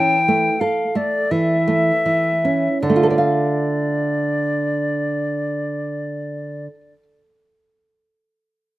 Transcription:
Already playing: nylon-string guitar E3 C#4, flute G5
0.28 nylon-string guitar A3
0.60 nylon-string guitar A4, flute F5
0.95 nylon-string guitar A3, flute D5
1.31 nylon-string guitar E3, flute E5
1.68 nylon-string guitar A3
2.06 nylon-string guitar E3
2.45 nylon-string guitar C#4
2.82 nylon-string guitar D3, flute D5
2.90 nylon-string guitar A3
2.96 nylon-string guitar F4
3.03 nylon-string guitar A4
3.10 nylon-string guitar D5
3.18 nylon-string guitar F5

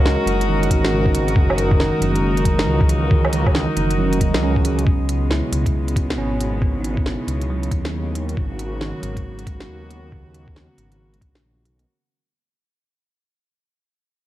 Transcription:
Already playing: detuned saw bass C#2, tine electric piano F#3, string section C#4 F#4 A#4, synth texture D#4 D#5
0.05 tine electric piano G#3, snare
0.24 detuned saw bass F#1, tine electric piano C#4, closed hi-hat
0.41 closed hi-hat
0.49 tine electric piano D#3
0.63 closed hi-hat
0.70 detuned saw bass G#1, kick, closed hi-hat
0.85 snare
0.94 tine electric piano C#3
1.06 kick
1.15 closed hi-hat
1.28 closed hi-hat
1.36 detuned saw bass F#1, string section D#4, kick
1.50 low woodblock
1.58 closed hi-hat
1.71 kick
1.80 tine electric piano D#3, snare
1.98 detuned saw bass F#1, tine electric piano F#3, closed hi-hat
2.12 tine electric piano G#3, closed hi-hat
2.37 closed hi-hat
2.45 kick, closed hi-hat
2.59 snare
2.67 detuned saw bass C#2, tine electric piano E3
2.81 kick
2.89 closed hi-hat
3.11 tine electric piano D#3, kick
3.25 low woodblock
3.33 closed hi-hat
3.46 kick, low woodblock
3.55 snare
3.77 detuned saw bass F#1, closed hi-hat
3.91 closed hi-hat
3.98 tine electric piano F#3
4.13 closed hi-hat
4.20 detuned saw bass E1, kick, closed hi-hat
4.34 detuned saw bass C#2, snare
4.43 tine electric piano C#4
4.56 kick
4.65 closed hi-hat
4.79 closed hi-hat
4.87 detuned saw bass C#2, string section B2 C#3 G#3 B3, kick
5.09 closed hi-hat
5.30 tine electric piano E4, snare
5.52 detuned saw bass C#2, closed hi-hat
5.66 kick, closed hi-hat
5.88 closed hi-hat
5.96 kick, closed hi-hat
6.10 snare
6.18 detuned saw bass G#1, tine electric piano C#4
6.41 closed hi-hat
6.62 tine electric piano B3, kick
6.81 tine electric piano D#4, closed hi-hat
6.94 tine electric piano E4, kick
7.06 snare
7.27 detuned saw bass C#2, closed hi-hat
7.41 closed hi-hat
7.50 tine electric piano F#3
7.63 closed hi-hat
7.71 detuned saw bass D#2, kick, closed hi-hat
7.85 snare
8.15 closed hi-hat
8.29 closed hi-hat
8.37 detuned saw bass G#1, string section A#3 B3 F#4, kick
8.59 closed hi-hat
8.81 tine electric piano D#3, snare
9.00 detuned saw bass G#1, tine electric piano F#3, closed hi-hat
9.13 tine electric piano G#3, kick, closed hi-hat
9.39 closed hi-hat
9.47 kick, closed hi-hat
9.61 snare
9.69 detuned saw bass D#2
9.91 closed hi-hat
10.12 tine electric piano C#3, kick
10.34 closed hi-hat
10.48 kick
10.56 snare
10.78 detuned saw bass G#1, closed hi-hat
10.92 closed hi-hat
11.14 closed hi-hat
11.21 detuned saw bass A#1, kick, closed hi-hat
11.35 snare
11.65 detuned saw bass B1, closed hi-hat
11.79 closed hi-hat

